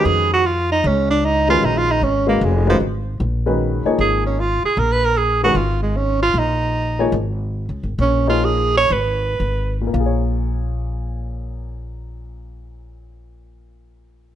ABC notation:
X:1
M:4/4
L:1/16
Q:"Swing" 1/4=152
K:Bbphr
V:1 name="Tenor saxophone"
A2 G2 F2 E2 D2 =D2 E2 F2 | (3E2 F2 E2 D2 B,2 A,2 F,2 z4 | z8 A2 D2 F2 A2 | (3B2 c2 B2 A2 G2 F2 A,2 D2 F2 |
E8 z8 | D2 F2 A2 d2 c6- c z | z16 | z16 |]
V:2 name="Grand piano"
[E,A,DGc]4 z8 z2 [E,A,DGc]2- | [E,A,DGc]4 z2 [A,DGcf]4 [E,A,DGc]2 z4 | z2 [E,A,DGc]4 [F,B,EAd]6 z4 | z6 [E,A,DGc]2 z8 |
z6 [F,B,EAd]2 z8 | z2 [F,B,EAd]6 z8 | [B,,B,FAd]16- | [B,,B,FAd]16 |]
V:3 name="Upright bass" clef=bass
F,,8 D,,8 | B,,,4 A,,,4 F,,,4 A,,,4 | B,,,6 z2 A,,,6 z2 | B,,,8 A,,,8 |
B,,,8 A,,,4- (3A,,,2 D,,2 A,,,2 | B,,,8 A,,,4 A,,,4 | B,,,16- | B,,,16 |]